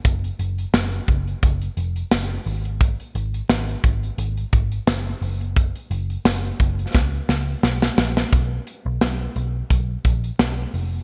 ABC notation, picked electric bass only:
X:1
M:4/4
L:1/16
Q:"Swing 16ths" 1/4=87
K:A#phr
V:1 name="Picked electric bass" clef=bass
F,,,2 F,,,2 F,,,2 F,,,2 F,,,2 E,,,2 F,,,2 G,,,2- | G,,,2 G,,,2 G,,,2 G,,,2 G,,,2 G,,,2 F,,,2 F,,,2- | F,,,2 F,,,2 F,,,2 F,,,2 C,,2 C,,2 B,,,2 A,,,2 | B,,,2 z B,,, B,,,2 B,,,2 B,,,2 _B,,,2 =B,,,2 =F,,,2 |]